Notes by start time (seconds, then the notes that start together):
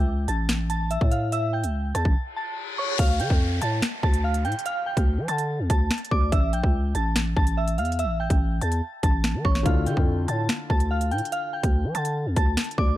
Already playing: C#2 G5 G6
0.28 A1 A5 A6, closed hi-hat
0.49 finger snap, snare, closed hi-hat
0.70 A5 A6, closed hi-hat
0.91 E5 E6, closed hi-hat
1.01 A2, kick
1.11 F5 F6, closed hi-hat
1.32 E5 E6, closed hi-hat
1.53 G5 G6
1.64 C#2, closed hi-hat
1.95 E2 A5 A6, cross-stick, closed hi-hat
2.05 A1, kick
2.16 reverse cymbal
2.36 A5 A6
2.78 C#5 C#6
2.99 D2 F5 F6, kick, closed hi-hat, crash, downlifter
3.20 D3 G5 G6, closed hi-hat
3.30 F2, kick
3.61 A2 A5 A6, closed hi-hat
3.82 finger snap, snare, closed hi-hat
4.03 D2 A5 A6, kick
4.14 closed hi-hat
4.24 F5 F6
4.34 closed hi-hat
4.45 A2 G5 G6, closed hi-hat
4.52 closed hi-hat
4.59 closed hi-hat
4.66 F5 F6, closed hi-hat
4.86 G5 G6
4.97 D2, kick, closed hi-hat
5.18 F3
5.28 D3 A5 A6, closed hi-hat
5.38 closed hi-hat
5.59 E2
5.70 D2 A5 A6, kick, closed hi-hat
5.91 finger snap, snare, closed hi-hat
5.98 closed hi-hat
6.05 closed hi-hat
6.11 D2 D5 D6, kick
6.32 A1 E5 E6, kick, closed hi-hat
6.53 A#1 G5 G6, closed hi-hat
6.63 C#2, kick
6.95 A1 A5 A6, closed hi-hat
7.16 finger snap, snare, closed hi-hat
7.36 A1 A5 A6, kick
7.47 closed hi-hat
7.57 E5 E6
7.68 closed hi-hat
7.78 E2 F5 F6, closed hi-hat
7.85 closed hi-hat
7.92 closed hi-hat
7.99 E5 E6, closed hi-hat
8.04 A1
8.20 G5 G6
8.30 A1, kick, closed hi-hat
8.61 E2 A5 A6, closed hi-hat
8.72 closed hi-hat
9.03 A1 A5 A6, kick, closed hi-hat
9.24 finger snap, snare, closed hi-hat
9.34 E3
9.45 A1 C#5 C#6, kick, cross-stick
9.55 snare
9.63 D2 D3 D4 E4 F5 F6, kick, closed hi-hat
9.69 F4
9.86 D3 G5 G6, closed hi-hat
9.97 F2, kick
10.28 A2 A5 A6, closed hi-hat
10.49 finger snap, snare, closed hi-hat
10.70 D2 A5 A6, kick
10.80 closed hi-hat
10.91 F5 F6
11.01 closed hi-hat
11.11 A2 G5 G6, closed hi-hat
11.18 closed hi-hat
11.25 closed hi-hat
11.32 F5 F6, closed hi-hat
11.53 G5 G6
11.63 D2, kick, closed hi-hat
11.84 F3
11.95 D3 A5 A6, closed hi-hat
12.05 closed hi-hat
12.26 E2
12.36 D2 A5 A6, kick, closed hi-hat
12.57 finger snap, snare, closed hi-hat
12.64 closed hi-hat
12.71 closed hi-hat
12.78 D2 D5 D6, kick